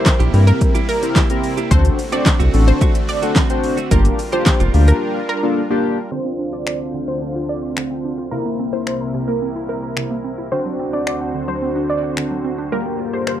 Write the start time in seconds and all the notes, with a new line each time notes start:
Already playing: C3 G3 A#3 C4 E4 G4 A#4
0.06 C5, muted clean electric guitar stroke, kick, snare, clap, closed hi-hat, shaker
0.20 A#1 A#3 E4 G4, closed hi-hat, shaker
0.33 G2 C4 E4 G4 A#4, muted clean electric guitar stroke, open hi-hat, shaker
0.47 A#4, muted clean electric guitar stroke, closed hi-hat, shaker
0.61 muted clean electric guitar stroke, kick, closed hi-hat, shaker
0.75 A#3 E4 G4, closed hi-hat, shaker
0.88 A#4, muted clean electric guitar stroke, open hi-hat, shaker
1.02 C4 E4 G4 A#4, muted clean electric guitar stroke, closed hi-hat, shaker
1.16 A#3 E4 G4, kick, snare, clap, closed hi-hat, shaker
1.30 C4 E4 G4 A#4, muted clean electric guitar stroke, closed hi-hat, shaker
1.43 muted clean electric guitar stroke, open hi-hat, shaker
1.57 A#3 E4 G4, closed hi-hat, shaker
1.71 D2 D3 A3 C4 D4 F#4 A4 C5, kick, closed hi-hat, shaker
1.85 muted clean electric guitar stroke, closed hi-hat, shaker
1.98 muted clean electric guitar stroke, open hi-hat, shaker
2.12 A3 C4 D4 F#4 C5 D5, closed hi-hat, shaker
2.26 D5, kick, snare, clap, closed hi-hat, shaker
2.40 C2 A3 C4 F#4, closed hi-hat, shaker
2.53 A1 C4 D4 F#4 A4, muted clean electric guitar stroke, open hi-hat, shaker
2.67 C5, muted clean electric guitar stroke, closed hi-hat, shaker
2.81 A3 C4 F#4, kick, closed hi-hat, shaker
2.95 muted clean electric guitar stroke, closed hi-hat, shaker
3.09 D5, muted clean electric guitar stroke, open hi-hat, shaker
3.22 A3 C4 D4 F#4 A4, closed hi-hat, shaker
3.36 A3 C4 F#4, kick, snare, clap, closed hi-hat, shaker
3.50 C4 D4 F#4 C5, muted clean electric guitar stroke, closed hi-hat, shaker
3.64 muted clean electric guitar stroke, open hi-hat, shaker
3.77 A3 C4 F#4, closed hi-hat, shaker
3.91 G1 G3 A#3 D4 F4 G4 A#4, kick, closed hi-hat, shaker
4.05 muted clean electric guitar stroke, closed hi-hat, shaker
4.19 muted clean electric guitar stroke, open hi-hat, shaker
4.32 A#3 D4 F4 G4 C5, closed hi-hat, shaker
4.46 C5, kick, snare, clap, closed hi-hat, shaker
4.60 F1 A#3 F4 G4, closed hi-hat, shaker
4.74 D2 A#3 D4 F4 G4, open hi-hat, shaker
4.88 A#4, muted clean electric guitar stroke, closed hi-hat, shaker
5.29 A#4
5.43 A#3 D4 F4 A4
5.70 A#3 D4 F4 G4
6.11 D2 D3 C4 D4 F4 C5
6.25 C4
6.39 D4
6.53 F4 D5
6.66 D5, finger snap
6.80 C6
6.94 D3
7.08 C4 C5
7.22 D4
7.35 F4
7.49 D5
7.63 C6
7.77 D3, finger snap
7.90 C4
8.04 D4
8.18 F4
8.31 C2 C3 A#3 C4 E4 A#4
8.46 A#3
8.59 C4
8.73 E4 C5
8.87 C5, finger snap
9.01 A#5
9.14 C3
9.28 A#3 A#4
9.42 C4
9.56 E4
9.69 A#4 C5
9.83 A#5
9.97 C3, finger snap
10.11 A#3
10.24 C4
10.38 E4
10.52 D2 D3 C4 D4 F#4 C5
10.66 F#3
10.79 C4
10.93 D4 D5
11.07 D5, finger snap
11.21 F#5
11.35 D3
11.48 F#3 C5
11.62 C4
11.76 D4
11.90 D5
12.03 F#5
12.17 D3, finger snap
12.31 F#3
12.45 C4
12.58 D4
12.72 G2 G3 A#3 F4 G4 A#4
12.86 A#3
12.99 F4
13.13 G4 C5
13.27 A#4 C5, finger snap